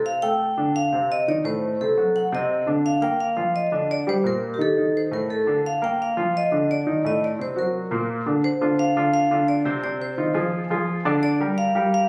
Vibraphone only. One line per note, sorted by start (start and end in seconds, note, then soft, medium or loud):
0.06 0.13 F5 medium
0.22 0.71 G5 medium
0.76 1.08 F5 medium
1.12 1.29 D#5 medium
1.29 1.46 D5 medium
1.45 1.77 C5 medium
1.81 2.16 A4 medium
2.16 2.33 F#5 medium
2.35 2.66 D#5 medium
2.86 3.03 F5 medium
3.02 3.10 G5 medium
3.20 3.53 F5 medium
3.56 3.88 D#5 medium
3.91 3.99 D5 medium
4.09 4.24 C5 medium
4.27 4.52 A#4 medium
4.54 4.60 G4 medium
4.62 4.96 A4 medium
4.97 5.14 C5 medium
5.13 5.21 A#4 medium
5.30 5.54 A4 medium
5.66 5.82 F5 medium
5.84 5.99 G5 medium
6.02 6.37 F5 medium
6.37 6.68 D#5 medium
6.71 7.03 D5 medium
7.07 7.23 D#5 medium
7.24 7.41 D5 medium
7.42 7.58 C5 medium
7.59 8.23 A#4 medium
8.44 8.77 C5 medium
8.79 9.12 F5 loud
9.14 9.46 F5 loud
9.48 9.82 D5 medium
9.84 10.00 D5 medium
10.02 10.34 C5 medium
11.23 11.55 D5 medium
11.58 11.93 F5 loud
11.94 12.09 F5 loud